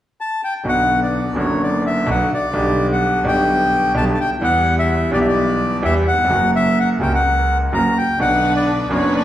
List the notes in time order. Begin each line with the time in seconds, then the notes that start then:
0.21 A5
0.44 G5
0.63 B1 B2 D3 F#3 B3 F#4
0.69 F#5
1.03 D5
1.34 F#1 F#2 D3 F#3 B3 F#4
1.39 C#5
1.63 D5
1.86 E5
2.06 B1 B2 D3 F#3 B3 F#4
2.10 F#5
2.34 D5
2.51 B1 B2 D3 G3 B3
2.56 G4
2.92 F#5
3.23 B1 B2 D3 G3 B3 G4
3.28 G5
3.94 B1 B2 D3 G3 B3 G4 A5
4.14 A5
4.20 G5
4.41 E2 E3 G3 B3 G4 F#5
4.79 E5
5.10 B1 B2 E3 G3 B3 D5
5.14 G4
5.21 E5
5.27 D5
5.82 E2 E3 G3 B3 G4 E5
6.08 F#5
6.12 D#2
6.18 E2
6.24 F2 C#3
6.30 F#1 F#2 F#3 A#3 F#4
6.56 E5
6.80 F#5
7.00 C#2 C#3 F#3 A#3 F#4 G5
7.15 F#5
7.73 F#1 F#2 C#3 F#3 A#3 F#4 A#5
7.98 G5
8.17 B1 B2 D3 F#3 B3 D4 B4 F#5
8.22 D4
8.56 D5
8.88 F#1 F#2 F#3 B3 C#4 D4 B4 C#5
8.93 D4
9.16 D5